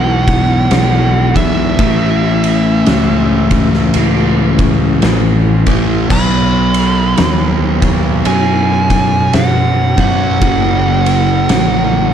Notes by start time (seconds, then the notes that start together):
Already playing: B1 E2 B2 E3 F#5
0.28 kick, ride
0.71 B1, snare, ride
1.34 E2 B2 E3 E5, kick, ride
1.78 A1 A2 E3 A3, kick, ride
2.44 ride
2.86 C#2, snare, ride
3.51 kick, ride
3.74 snare
3.94 C#2, ride
4.59 kick, ride
5.02 A1, snare, ride
5.66 A2 E3 A3, kick, ride
6.10 B1 B2 F#3 B3 B5, kick, crash
6.74 ride
7.18 D#2, snare, ride
7.82 kick, ride
8.25 F#2 G#5, ride
8.90 kick, ride
9.33 F#2 F#5, snare, ride
9.98 B2 F#3 B3 F#5, kick, ride
10.41 F#1 F#2 C#3 F#3, kick, ride
11.06 ride
11.49 A1, snare, ride